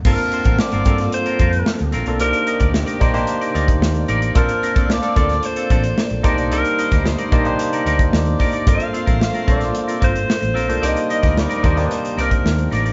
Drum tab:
CC |x---------------|----------------|----------------|----------------|
HH |-xxx-xxxxxxx-xxx|xxxx-xxxxxxx-xxx|xxxx-xxxxxxx-xxx|xxxx-xxxxxxx-xox|
SD |----o--o----o-o-|----o--o----o---|----o--o----o-o-|---oo-------o-o-|
BD |o--o--o---o-----|---o--o----o----|o--o--o---o---o-|---o--o----o--o-|

CC |----------------|----------------|
HH |xxxx-xxxxxxx-xxx|xxxx-xxxxxxx-xxx|
SD |----o--o----o-o-|---oo--o----o-o-|
BD |o--o--o---o-----|---o--o----o----|